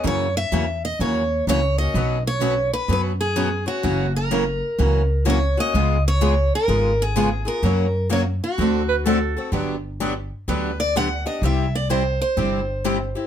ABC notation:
X:1
M:4/4
L:1/8
Q:"Swing" 1/4=126
K:F#mix
V:1 name="Steel-string acoustic guitar"
c e2 d c2 c d- | d c2 B B G2 F- | F A4- A c d- | d c2 A2 G2 A- |
A2 c F4 z | [K:G] z4 B d f _e | e d c c4- c |]
V:2 name="Clarinet"
z8 | z8 | z8 | z8 |
z4 z B =A2 | [K:G] z8 | z8 |]
V:3 name="Steel-string acoustic guitar"
[F,CEA] z [F,CEA] z [F,CEA] z [F,CEA] z | [B,CFB] z [B,CFB] z [B,CFB] z [B,CFB] z | [F,CEA] z [F,CEA] z [F,CEA] z [F,CEA] z | [C,G,B,^EG] z [C,G,B,EG] z [C,G,B,EG] z [C,G,B,EG] z |
[F,A,CFA] z [F,A,CFA] z [=D,=A,=CF=A] z [D,A,CFA] z | [K:G] [D,F,B,DG] z [D,F,B,DG] z [D,F,B,DG] z [D,F,B,DG] z | [C,G,CEG] z [C,G,CEG] z [C,G,CEG] z [C,G,CEG] z |]
V:4 name="Steel-string acoustic guitar"
[C,E,A,CF] z [C,E,A,CF] z [C,E,A,CF] z [C,E,A,CF] [A,CF] | [B,,F,B,CF] z [B,,F,B,CF] z [B,,F,B,CF] z [B,,F,B,CF] [B,CF] | [C,E,A,CF] z [C,E,A,CF] z [C,E,A,CF] z [C,E,A,CF] [A,CF] | [C,G,B,^EG] z [C,G,B,EG] z [C,G,B,EG] z [C,G,B,EG] [B,EG] |
[C,F,A,CF] z [C,F,A,CF] z [=D,=A,=CF=A] z [D,A,CFA] [CFA] | [K:G] [D,F,B,DG] z [D,F,B,DG] z [D,F,B,DG] z [D,F,B,DG] [B,DG] | [C,G,CEG] z [C,G,CEG] z [C,G,CEG] z [C,G,CEG] [CEG] |]
V:5 name="Upright bass" clef=bass
F,,2 E,,2 D,,2 C,,2 | B,,,4 F,,4 | F,,,4 C,,4 | C,,4 G,,,4 |
F,,4 =D,,4 | [K:G] G,,,4 D,,4 | C,,4 G,,,4 |]